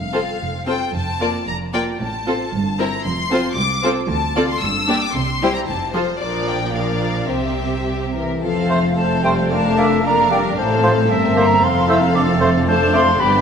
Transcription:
Already playing: double bass section F1, cello section F2, violin section F5
0.13 viola section C4 F4, violin section A4 C5
0.41 double bass section F1, cello section F2
0.66 viola section C4 F4, violin section A4 C5 G5
0.95 double bass section F1, cello section F2, violin section A5
1.20 viola section A#3 F4, violin section A#4 D5
1.47 double bass section F1, cello section F2, violin section A#5
1.72 viola section A#3 F4, violin section A#4 D5 G5
2.00 double bass section A1, cello section A2, violin section A5
2.26 viola section C4 F4, violin section A4 C5
2.53 double bass section G1, cello section G2
2.79 viola section C4 E4, violin section A#4 C5 A#5
3.04 double bass section F1, cello section F2, violin section C6
3.31 viola section C4 F4, violin section A4 C5
3.56 double bass section C2, cello section C2, violin section D6
3.83 viola section C4 F4, violin section A4 C5
4.09 double bass section D2, cello section D2, violin section A5
4.36 viola section C4 F4, violin section A4 D5
4.49 violin section C6
4.60 double bass section G1, cello section G2, violin section E6
4.88 viola section A#3 D4, violin section G4 D5
5.02 violin section D6
5.13 double bass section C2, cello section C3, violin section C6
5.42 viola section G3 E4, violin section G4 C5
5.54 violin section A#5
5.66 double bass section F1, cello section F2, violin section A5
5.93 viola section F3 F4, violin section A4 C5
6.20 double bass section A#1, cello section A#2, viola section F3 D4, violin section A#4 D5
6.47 violin section G5
6.74 viola section F3 D4, violin section A#4 D5 F5
7.28 double bass section C2, cello section C3, viola section C4 G4, violin section G4 C5 E5
7.85 violin section G4
8.14 french horn section E3, violin section A#4, flute section E5
8.41 double bass section F1, cello section F2, french horn section F3, viola section C4, violin section A4 F5, flute section F5
8.70 bassoon A3, oboe C5
8.96 french horn section A3, viola section C4, violin section A4 F5, clarinet C5, flute section A5
9.23 french horn section G3, bassoon A3, oboe C5, flute section G5
9.50 french horn section A3, viola section D4, violin section A#4 F5, clarinet D5, flute section A5
9.77 bassoon A#3, oboe D5, clarinet E5
10.03 french horn section A#3, viola section D4, violin section A#4 F5, clarinet D5, flute section A#5
10.31 french horn section G3, bassoon A#3, oboe D5, flute section G5
10.56 double bass section A1, cello section A2, french horn section A3, viola section C4, violin section A4 F5, clarinet C5, flute section A5
10.83 bassoon F3, oboe C5
11.09 double bass section G1, cello section G2, viola section C4, violin section A#4 E5, clarinet E5
11.35 french horn section A#3, bassoon A#3, oboe C5, flute section A#5
11.61 double bass section F1, cello section F2, french horn section C4, viola section C4, violin section A4 F5, clarinet F5, flute section C6
11.87 bassoon A3, french horn section E4, oboe C5, flute section E6
12.15 french horn section D4, clarinet A4, flute section D6
12.41 bassoon A3, oboe C5
12.67 french horn section A3, viola section D4, violin section A4 F5, clarinet C5, flute section A5
12.93 bassoon A3, french horn section C4, oboe D5, flute section C6
13.19 double bass section G1, cello section G2, french horn section B3, viola section D4, violin section G4 D5, clarinet B4, flute section B5

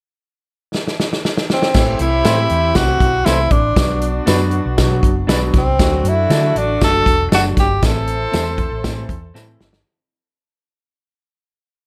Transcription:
0.74 snare
0.88 snare
1.00 snare
1.13 snare
1.25 snare
1.38 snare
1.50 tenor saxophone C4, snare
1.62 snare
1.74 fingered electric bass A1, grand piano E3 A3 C4 E4, horn section C4 E4 G4, kick, snare, crash, tambourine
1.99 fingered electric bass C2, tenor saxophone E4, closed hi-hat
2.24 fingered electric bass A2, grand piano E3 A3 C4 E4, clean electric guitar E4 A4 C5, snare, closed hi-hat, tambourine
2.49 fingered electric bass E2, closed hi-hat
2.75 fingered electric bass C2, grand piano E3 A3 C4 E4, tenor saxophone F#4, kick, snare, closed hi-hat, tambourine
3.00 fingered electric bass B1, kick, closed hi-hat
3.25 fingered electric bass C2, grand piano E3 A3 C4 E4, clean electric guitar E4 A4 C5, tenor saxophone E4, snare, closed hi-hat, tambourine
3.51 fingered electric bass A1, tenor saxophone D4, kick, closed hi-hat
3.76 fingered electric bass B1, grand piano F#3 B3 D4 F#4, horn section B3 D4 F#4, kick, snare, closed hi-hat, tambourine
4.01 closed hi-hat
4.26 fingered electric bass F#2, grand piano F#3 B3 D4 F#4, clean electric guitar D4 F#4 B4, snare, closed hi-hat, tambourine
4.51 closed hi-hat
4.65 fingered electric bass B1
4.77 fingered electric bass B2, grand piano F#3 B3 D4 F#4, kick, snare, closed hi-hat, tambourine
5.03 fingered electric bass F#1, kick, closed hi-hat
5.27 fingered electric bass B1, grand piano F#3 B3 D4 F#4, clean electric guitar D4 F#4 B4, snare, closed hi-hat, tambourine
5.54 fingered electric bass C2, kick, snare, closed hi-hat
5.58 tenor saxophone C4
5.79 fingered electric bass D2, grand piano F#3 A3 D4 F#4, horn section D4 F#4 A4, kick, snare, closed hi-hat, tambourine
6.04 fingered electric bass F#2, closed hi-hat
6.08 tenor saxophone E4
6.30 fingered electric bass D3, grand piano F#3 A3 D4 F#4, clean electric guitar D4 F#4 A4, snare, closed hi-hat, tambourine
6.55 fingered electric bass A1, tenor saxophone D4, closed hi-hat
6.81 fingered electric bass F#1, grand piano F#3 A3 D4 F#4, tenor saxophone A4, kick, snare, closed hi-hat, tambourine
7.06 fingered electric bass E1, kick, closed hi-hat
7.31 fingered electric bass F#1, grand piano F#3 A3 D4 F#4, clean electric guitar D4 F#4 A4, tenor saxophone F#4, snare, closed hi-hat, tambourine
7.57 fingered electric bass G1, tenor saxophone G4, kick, snare, closed hi-hat
7.82 fingered electric bass A1, grand piano E3 A3 C4 E4, horn section E4 A4 C5, tenor saxophone A4, kick, snare, closed hi-hat, tambourine
8.07 closed hi-hat
8.32 fingered electric bass E2, grand piano E3 A3 C4 E4, clean electric guitar C4 E4 A4, snare, closed hi-hat, tambourine
8.58 kick, closed hi-hat
8.72 fingered electric bass A1
8.83 fingered electric bass A2, grand piano E3 A3 C4 E4, kick, snare, closed hi-hat, tambourine
9.09 fingered electric bass E2, kick, closed hi-hat
9.34 fingered electric bass A2, grand piano E3 A3 C4 E4, clean electric guitar C4 E4 A4, snare, tambourine
9.60 fingered electric bass G1, snare
9.73 snare

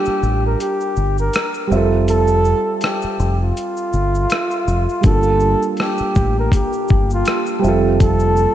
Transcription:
Already playing: felt piano G3 A#3 D4 F4 G4, flugelhorn G4
0.06 muted fingered electric bass stroke, shaker
0.23 fingered electric bass A1, shaker
0.46 flugelhorn A#4
0.60 flugelhorn G4, closed hi-hat, shaker
0.81 shaker
0.96 fingered electric bass G1, shaker
1.18 flugelhorn A#4, shaker
1.34 cross-stick, closed hi-hat, shaker
1.54 shaker
1.68 fingered electric bass F1, felt piano G3 C4
1.72 felt piano F4 E5, shaker
1.77 felt piano A4
2.08 flugelhorn A4, closed hi-hat, shaker
2.28 shaker
2.45 shaker
2.81 flugelhorn G4, cross-stick, closed hi-hat, shaker
3.02 muted fingered electric bass stroke, shaker
3.20 fingered electric bass F1, shaker
3.44 flugelhorn F4
3.57 closed hi-hat, shaker
3.77 shaker
3.93 fingered electric bass G1, shaker
4.15 shaker
4.30 cross-stick, closed hi-hat, shaker
4.51 shaker
4.68 fingered electric bass F1, shaker
4.89 shaker
5.01 fingered electric bass G1, felt piano G3 A#3, ambient pad A#3 G4 F5 A5, kick, closed hi-hat, shaker
5.05 felt piano D4 F4, flugelhorn A4
5.10 felt piano A4
5.23 shaker
5.40 shaker
5.62 shaker
5.77 cross-stick, closed hi-hat, shaker
5.81 flugelhorn G4
5.98 muted fingered electric bass stroke, shaker
6.15 fingered electric bass A1, kick, shaker
6.39 flugelhorn A#4
6.52 flugelhorn G4, kick, closed hi-hat, shaker
6.73 shaker
6.88 fingered electric bass G1, kick, shaker
7.10 flugelhorn F4, shaker
7.25 cross-stick, closed hi-hat, shaker
7.46 shaker
7.59 felt piano G3 C4
7.64 fingered electric bass F1, ambient pad F4 C5 E5, felt piano F4 E5, shaker
7.69 felt piano A4
8.00 flugelhorn A4, kick, closed hi-hat, shaker
8.20 shaker
8.36 shaker

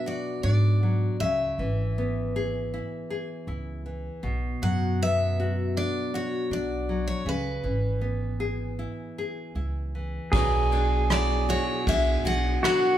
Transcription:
Already playing: nylon-string guitar B2 F#3 B3 D4
0.06 nylon-string guitar F#4, steel-string acoustic guitar D5
0.43 upright bass G#2, nylon-string guitar D4, steel-string acoustic guitar D5
0.83 nylon-string guitar F#3
1.20 upright bass C#2, nylon-string guitar C#3, steel-string acoustic guitar E5
1.58 upright bass G#1, nylon-string guitar E3
1.98 nylon-string guitar B3
2.36 nylon-string guitar G#4
2.74 nylon-string guitar E4
3.10 nylon-string guitar G#4
3.47 upright bass C#2, nylon-string guitar E4
3.86 nylon-string guitar E3
4.23 upright bass B1, nylon-string guitar B2
4.62 upright bass F#2, nylon-string guitar F#3, steel-string acoustic guitar F#5
5.02 nylon-string guitar B3, steel-string acoustic guitar E5
5.40 nylon-string guitar F#4
5.77 nylon-string guitar D4, steel-string acoustic guitar D5
6.14 nylon-string guitar F#4, steel-string acoustic guitar C#5
6.50 upright bass B1, nylon-string guitar D4, steel-string acoustic guitar D5
6.89 nylon-string guitar F#3
7.08 steel-string acoustic guitar C#5
7.25 upright bass C#2, nylon-string guitar C#3, steel-string acoustic guitar B4
7.63 upright bass G#1, nylon-string guitar E3
8.01 nylon-string guitar B3
8.40 nylon-string guitar G#4
8.79 nylon-string guitar E4
9.18 nylon-string guitar G#4
9.55 upright bass C#2, nylon-string guitar E4
9.95 nylon-string guitar E3
10.32 upright bass B1, nylon-string guitar B2, steel-string acoustic guitar F#3 D4, pedal steel guitar G#4, kick, ride
10.72 nylon-string guitar D4, ride
11.10 steel-string acoustic guitar F#3 D5, cross-stick, ride
11.49 nylon-string guitar F#4, steel-string acoustic guitar C#5, ride
11.87 upright bass B1, nylon-string guitar D4, steel-string acoustic guitar E5, kick, ride
12.24 upright bass B1, nylon-string guitar F#4, steel-string acoustic guitar F#5, ride
12.63 steel-string acoustic guitar F#3 F#5, nylon-string guitar D4, pedal steel guitar F#4, cross-stick, ride

